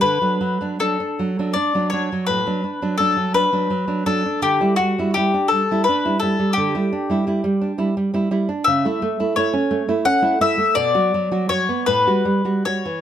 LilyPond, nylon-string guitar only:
\new Staff \with { instrumentName = "Nylon-string guitar" } { \time 12/8 \key d \major \tempo 4. = 56 d16 <fis d'>16 fis16 <fis d'>16 <fis d'>16 d'16 fis16 <fis d'>16 d'16 <fis d'>16 <fis d'>16 fis16 a,16 <fis d'>16 d'16 <fis d'>16 <fis d'>16 fis16 d'16 <fis d'>16 fis16 <fis d'>16 <fis d'>16 d'16 | d16 <g e'>16 g16 <g e'>16 <g e'>16 d'16 g16 <g e'>16 d'16 <g e'>16 <g e'>16 g16 d16 <g e'>16 d'16 <g e'>16 <g e'>16 g16 d'16 <g e'>16 g16 <g e'>16 <g e'>16 d'16 | cis16 <a e'>16 a16 <a e'>16 <a e'>16 cis'16 a16 <a e'>16 cis'16 <a e'>16 <a e'>16 a16 b,16 <fis fis'>16 fis16 <fis fis'>16 <fis fis'>16 b16 a,16 <g fis'>16 g16 <g fis'>16 <g fis'>16 e16 | }